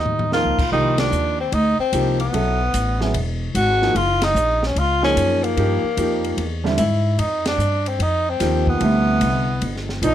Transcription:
Already playing: D#2 D#4
0.06 floor tom
0.19 floor tom
0.32 F3 A#3 D#4 F4 A#4, snare
0.45 C#2
0.58 A#1, kick, crash
0.71 C2 D#3 F3 A#3 D#4 G4, kick
0.98 D4, snare, ride
1.12 D#2, hi-hat pedal
1.40 C4
1.52 D2 D#4, kick, ride
1.79 C4, muted upright bass stroke
1.92 C2 F3 A#3 D#4 G4, kick, hi-hat pedal, ride
2.20 B3, ride
2.33 B1 F#3 B3 E4 A4, kick, ride
2.74 A1, kick, hi-hat pedal, ride
3.01 F#3 B3 E4 G#4, snare
3.14 E1, kick, ride
3.55 G#1 F#4, kick, hi-hat pedal, ride
3.81 F3 A#3 D#4 G#4, snare
3.95 F#1 F4, kick, ride
4.22 D#4, snare, ride
4.35 A#1, hi-hat pedal
4.63 C#4, snare
4.75 C#2 F4, kick, ride
5.02 F3 A#3 C#4 D#4 G#4, snare
5.16 F#2, kick, hi-hat pedal, ride
5.44 A#3, ride
5.57 G2 F3 A#3 D#4 G4, kick, ride
5.83 muted upright bass stroke
5.97 F2 F3 A#3 D#4 G4, kick, hi-hat pedal, ride
6.24 ride
6.37 E2, kick, ride
6.64 D3 G3 C4 E4, snare
6.78 G#2 E4, kick, hi-hat pedal, ride
7.18 F2 D#4, kick, ride
7.46 D4, snare, ride
7.58 G2, hi-hat pedal
7.86 C4, ride
7.99 F2 D#4, kick, ride
8.29 C4
8.40 D#2 F3 A#3 D#4 G4, kick, snare, hi-hat pedal, ride
8.67 B3, kick
8.80 D2 C3 D3 G3 E4, kick, ride
9.21 C2, kick, hi-hat pedal, ride
9.62 G1, kick, ride
9.76 snare
9.89 snare
10.02 B1 F3 B3 D4 D#4, kick, hi-hat pedal, ride

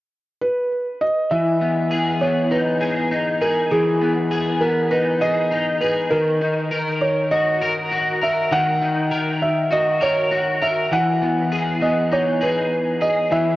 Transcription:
0.41 B4
1.01 D#5
1.31 E3 E5
1.61 B3
1.91 G#4
2.21 B3 C#5
2.51 D#4 B4
2.81 G#4
3.11 D#4
3.41 G#4 A#4
3.71 E3 G#4
4.01 B3
4.31 G#4
4.61 B3 A#4
4.91 D#4 B4
5.21 G#4 D#5
5.51 D#4
5.81 G#4 B4
6.11 D#3 A#4
6.41 D#4
6.71 A#4
7.01 C#5
7.31 F#4 D#5
7.61 A#4
7.91 F#4
8.21 A#4 E5
8.51 D#3 F#5
8.81 D#4
9.11 A#4
9.42 E5
9.71 F#4 D#5
10.01 A#4 C#5
10.31 F#4
10.61 A#4 E5
10.91 E3 F#5
11.22 B3
11.52 G#4
11.81 B3 D#5
12.11 D#4 C#5
12.41 G#4 B4
13.01 G#4 D#5
13.31 E3 E5

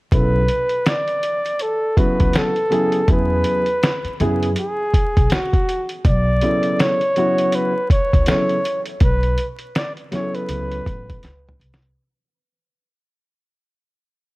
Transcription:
0.12 B1 C#3 F#3 B3 E4 A4 B4, kick, closed hi-hat
0.48 closed hi-hat
0.69 closed hi-hat
0.86 D5, snare, closed hi-hat
1.08 closed hi-hat
1.23 closed hi-hat
1.46 closed hi-hat
1.59 A4, closed hi-hat
1.97 C#3 F#3 B3 E4 F#4 B4, kick, closed hi-hat
2.20 C#2, kick, closed hi-hat
2.33 snare, closed hi-hat
2.37 A4
2.56 closed hi-hat
2.70 C#3 F#3 B3 E4 G#4, closed hi-hat
2.92 closed hi-hat
3.08 E2 C#3 F#3 B3 E4 G#4 B4, kick, closed hi-hat
3.44 closed hi-hat
3.66 closed hi-hat
3.83 snare, closed hi-hat
4.04 muted upright bass stroke, closed hi-hat
4.20 F#2 C#3 F#3 B3 E4 G#4, closed hi-hat
4.43 closed hi-hat
4.56 G#4, closed hi-hat
4.94 kick, closed hi-hat
5.17 B1, kick, closed hi-hat
5.30 F#4, snare, closed hi-hat
5.53 kick, closed hi-hat
5.69 closed hi-hat
5.89 closed hi-hat
6.05 B1 D5, kick, closed hi-hat
6.41 C#3 F#3 B3 E4 A4, closed hi-hat
6.63 closed hi-hat
6.79 C#5, snare, closed hi-hat
7.01 closed hi-hat
7.16 C#3 F#3 B3 E4 F#4, closed hi-hat
7.38 closed hi-hat
7.52 B4, closed hi-hat
7.90 C#5, kick, closed hi-hat
8.13 C#2, kick, closed hi-hat
8.26 C#3 F#3 B3 E4 A4 C#5, snare, closed hi-hat
8.49 closed hi-hat
8.65 closed hi-hat
8.85 closed hi-hat
9.00 B1 B4, kick, closed hi-hat
9.23 closed hi-hat
9.38 closed hi-hat
9.59 closed hi-hat
9.75 D5, snare, closed hi-hat
9.97 closed hi-hat
10.11 C#3 F#3 B3 E4 G#4 C#5, snare, closed hi-hat
10.20 A4
10.35 B4, closed hi-hat
10.49 C#2, closed hi-hat
10.71 closed hi-hat
10.86 A1, kick, closed hi-hat
11.10 kick, closed hi-hat
11.23 C#2, snare, closed hi-hat
11.49 mid tom
11.60 C2, closed hi-hat
11.74 snare
11.82 closed hi-hat

